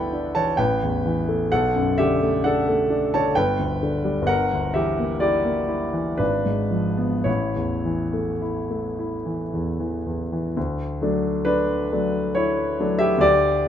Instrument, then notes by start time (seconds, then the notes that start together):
grand piano
Already playing: G1 D2 E3 B3 D4 E4 A4 B4 F#5 G5
0.13 D4
0.35 E3 C#5 A5
0.57 A1 B4 G5
0.82 E2
1.06 E3
1.29 A3
1.52 B1 A4 F#5
1.76 F#2
1.98 D3 G4 E5
2.22 A3
2.44 D4 A4 F#5
2.69 A3
2.90 D4
3.14 D3 C#5 A5
3.35 G1 B4 G5
3.59 D2
3.83 D3
4.04 G3
4.22 G1
4.27 A#4 F#5
4.53 D2
4.74 E3 G4 E5
4.99 A#3
5.20 E4 G4 D5
5.45 A#3
5.68 E4
5.93 E3
6.18 G#1 D4 B4
6.46 G#2
6.71 F3
6.97 B3
7.24 A1 E4 C#5
7.56 E2
7.85 E3
8.13 A3
8.41 E4
8.71 A3
8.99 E4
9.26 E3
9.53 E2
9.80 E3
10.06 E2
10.33 E3
10.57 D2
11.01 F#3 A3 D4
11.45 D4 B4
11.92 F#3 A3 D4
12.35 E4 C#5
12.79 F#3 A3 D4
12.99 G4 E5
13.18 D2 G4 D5